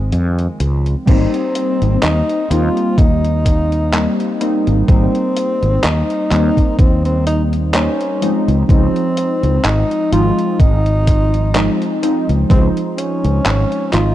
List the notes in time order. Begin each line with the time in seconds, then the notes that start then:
Already playing: G#1 D#3 F3 G#3 C4
0.12 F2, closed hi-hat
0.39 closed hi-hat
0.60 C#2, closed hi-hat
0.86 closed hi-hat
1.05 G#1 G3 A#3 C4 D#4, kick, closed hi-hat, crash
1.34 closed hi-hat
1.55 closed hi-hat
1.82 G#1, closed hi-hat
2.03 D#2 D#4, clap, closed hi-hat
2.29 closed hi-hat
2.49 D#2 G3 A#3 C4 D#4 F4, closed hi-hat
2.77 closed hi-hat
2.98 D#2 D#4, kick, closed hi-hat
3.25 closed hi-hat
3.46 kick, closed hi-hat
3.72 closed hi-hat
3.93 G3 A#3 C4 D#4, clap, closed hi-hat
4.20 closed hi-hat
4.40 G3 A#3 C4 D#4, closed hi-hat
4.67 G#1, closed hi-hat
4.88 G#1 G3 A#3 C4 D#4, kick, closed hi-hat
5.15 closed hi-hat
5.37 closed hi-hat
5.62 G#1, closed hi-hat
5.84 D#2 D#4, clap, closed hi-hat
6.10 closed hi-hat
6.30 D#2 G3 A#3 C4 D#4, clap, closed hi-hat
6.57 kick, closed hi-hat
6.79 D#2 C4, kick, closed hi-hat
7.05 C4, closed hi-hat
7.27 D#4, closed hi-hat
7.53 closed hi-hat
7.74 G3 A#3 C#4 D#4 C5, clap, closed hi-hat
8.01 closed hi-hat
8.21 F3 G#3 C4 D#4, closed hi-hat
8.48 C#2, closed hi-hat
8.68 C#2 F3 G#3 C4 D#4, kick, closed hi-hat
8.96 closed hi-hat
9.17 closed hi-hat
9.43 C#2, closed hi-hat
9.65 G#1 D#4, clap, closed hi-hat
9.91 closed hi-hat
10.11 G#1 F3 G#3 C4 D#4 F4, closed hi-hat
10.39 closed hi-hat
10.60 G#1 D#4, kick, closed hi-hat
10.86 closed hi-hat
11.07 kick, closed hi-hat
11.34 closed hi-hat
11.54 F3 G#3 C4 D#4, clap, closed hi-hat
11.82 closed hi-hat
12.02 F3 G#3 C4 D#4, closed hi-hat
12.29 C#2, closed hi-hat
12.49 C#2 F3 G#3 C4 D#4 C5, kick, closed hi-hat
12.77 closed hi-hat
12.98 C#4, closed hi-hat
13.24 C#2, closed hi-hat
13.46 G#1, clap, closed hi-hat
13.72 closed hi-hat
13.92 G#1 F3 G#3 C4 D#4 F4, clap, closed hi-hat